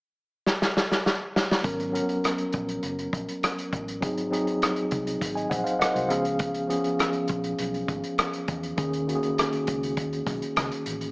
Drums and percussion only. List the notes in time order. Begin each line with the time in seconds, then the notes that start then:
0.46 snare
0.62 snare
0.77 snare
0.92 snare
1.06 snare
1.36 snare
1.51 snare
1.64 kick, closed hi-hat
1.80 closed hi-hat
1.95 closed hi-hat
2.09 closed hi-hat
2.24 cross-stick, closed hi-hat
2.38 closed hi-hat
2.52 kick, closed hi-hat
2.69 closed hi-hat
2.83 closed hi-hat
2.99 closed hi-hat
3.13 kick, closed hi-hat
3.29 closed hi-hat
3.43 cross-stick, closed hi-hat
3.58 closed hi-hat
3.73 kick, closed hi-hat
3.88 closed hi-hat
4.02 kick, closed hi-hat
4.17 closed hi-hat
4.33 closed hi-hat
4.47 closed hi-hat
4.62 cross-stick, closed hi-hat
4.76 closed hi-hat
4.91 kick, closed hi-hat
5.07 closed hi-hat
5.21 kick, closed hi-hat
5.37 closed hi-hat
5.51 kick, closed hi-hat
5.66 closed hi-hat
5.81 cross-stick, closed hi-hat
5.96 closed hi-hat
6.10 closed hi-hat
6.25 closed hi-hat
6.39 kick, closed hi-hat
6.54 closed hi-hat
6.70 closed hi-hat
6.84 closed hi-hat
6.99 cross-stick, closed hi-hat
7.13 closed hi-hat
7.28 kick, closed hi-hat
7.44 closed hi-hat
7.59 closed hi-hat
7.74 closed hi-hat
7.88 kick, closed hi-hat
8.04 closed hi-hat
8.18 cross-stick, closed hi-hat
8.33 closed hi-hat
8.48 kick, closed hi-hat
8.63 closed hi-hat
8.78 kick, closed hi-hat
8.93 closed hi-hat
9.09 closed hi-hat
9.23 closed hi-hat
9.38 cross-stick, closed hi-hat
9.53 closed hi-hat
9.67 kick, closed hi-hat
9.83 closed hi-hat
9.97 kick, closed hi-hat
10.13 closed hi-hat
10.27 kick, cross-stick, closed hi-hat
10.42 closed hi-hat
10.56 cross-stick, closed hi-hat
10.72 closed hi-hat
10.86 closed hi-hat
11.01 closed hi-hat